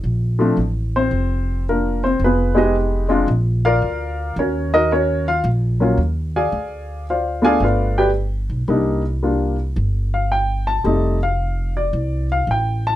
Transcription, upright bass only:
X:1
M:4/4
L:1/8
Q:"Swing" 1/4=111
K:Bb
V:1 name="Upright bass" clef=bass
B,,,2 A,,,2 F,,,4 | F,,,4 B,,,2 D,,2 | E,,4 B,,,2 E,,2 | D,,4 G,,,3 =B,,, |
C,,4 G,,,4 | F,,,4 C,,2 A,,,2 |]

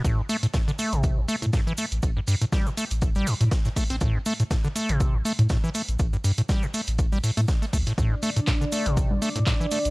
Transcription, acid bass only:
X:1
M:4/4
L:1/16
Q:"Swing 16ths" 1/4=121
K:Am
V:1 name="Acid bass" clef=bass
A,, G,, A, A,, A,, D, A, C,2 G,, A, A,, A,, E, A, z | z G,, G,, A,, G, A,, A, z2 G, G,, A,, z A,, A, C | A,, G,, A, A,, A,, D, A, C,2 G,, A, A,, A,, E, A, z | z G,, G,, A,, G, A,, A, z2 G, A,, A, z A, A, A,, |
A,, G,, A, A,, A,, D, A, C,2 G,, A, A,, A,, E, A, z |]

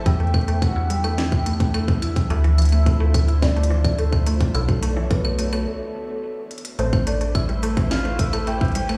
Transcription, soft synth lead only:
X:1
M:4/4
L:1/16
Q:1/4=107
K:Am
V:1 name="Soft synth lead"
g4 ^f2 g8 z2 | e8 d4 A3 z | A4 B4 A6 z2 | c2 d2 e4 f2 e2 g3 z |]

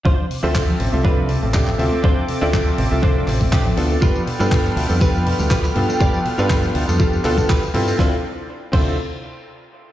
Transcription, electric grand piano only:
X:1
M:4/4
L:1/16
Q:1/4=121
K:Ddor
V:1 name="Electric grand piano"
z3 [CFAe]4 [CFAe]6- [CFAe] [CFAe]2- | [CFAe]3 [CFAe]4 [CFAe]6- [CFAe] [B,DFA]2- | [B,DFA]3 [B,DFA]4 [B,DFA]6- [B,DFA] [B,DFA]2- | [B,DFA]3 [B,DFA]4 [B,DFA]3 [B,DFA] [B,DFA] z2 [CEFA]2 |
[CEFA] z4 z [CEFA]2 z8 |]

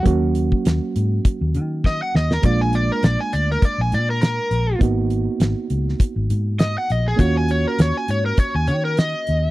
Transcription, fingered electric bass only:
X:1
M:4/4
L:1/16
Q:"Swing 16ths" 1/4=101
K:Ebm
V:1 name="Fingered electric bass" clef=bass
E,,4 E,, z A,,2 z E,, E,4 E,,2 | B,,,4 B,,, z =D,,2 z B,,, B,,4 B,,,2 | A,,,4 A,,, z D,,2 z A,,, A,,4 B,,,2 | E,,4 E,, z A,,2 z E,, E,4 E,,2 |]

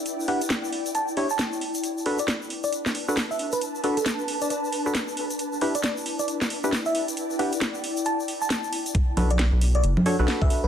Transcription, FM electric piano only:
X:1
M:4/4
L:1/16
Q:"Swing 16ths" 1/4=135
K:Bm
V:1 name="FM electric piano"
z2 f z4 z a z2 a3 z2 | z3 d z3 d z4 z e2 B | z3 A z3 d d z6 z | z3 d d z2 d z4 z e2 z |
z2 f z4 z a z2 a3 z2 | z3 d d z2 d z4 z e2 B |]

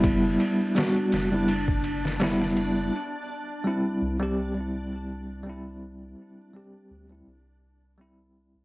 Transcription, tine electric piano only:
X:1
M:4/4
L:1/16
Q:"Swing 16ths" 1/4=83
K:Clyd
V:1 name="Tine electric piano"
[G,B,E]4 [G,B,F]3 [G,B,E] z4 [G,B,E]4 | z4 [G,CE]3 [G,CG]2 [G,CE]4- [G,CE] [G,CE]2- | [G,CE]4 [G,CG]3 [G,CE] z4 [G,CE]4 |]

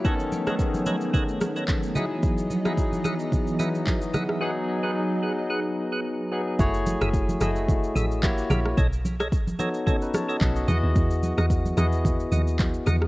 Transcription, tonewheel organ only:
X:1
M:4/4
L:1/16
Q:"Swing 16ths" 1/4=110
K:E
V:1 name="Tonewheel organ"
[ABcd] z2 [ABcd] z2 [ABcd] z [ABcd] z2 [ABcd] z2 [Gdef] z | z3 [Gdef] z2 [Gdef] z3 [Gdef] z3 [Gdef] z | [GBf] z2 [GBf] z2 [GBf] z [GBf] z2 [GBf] z2 [GBf] z | z3 [GAe] z2 [GAe] z3 [GAe] z3 [=G^Ae] z |
[Acd] z2 [Acd] z2 [Acd] z [Acd] z2 [Acd] z2 [Gdf] z | z3 [Gdf] z2 [Gdf] z3 [Gdf] z3 [Gdf] z |]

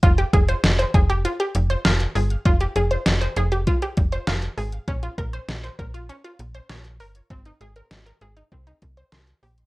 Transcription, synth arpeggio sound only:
X:1
M:4/4
L:1/16
Q:1/4=99
K:Fm
V:1 name="Synth arpeggio sound"
F G A c z c A G F G z c f z A z | F G A c z c A G F G z c f z A z | D F B c z c B F D F z c d z B z | C E A B z B A E C E z c c' z G z |]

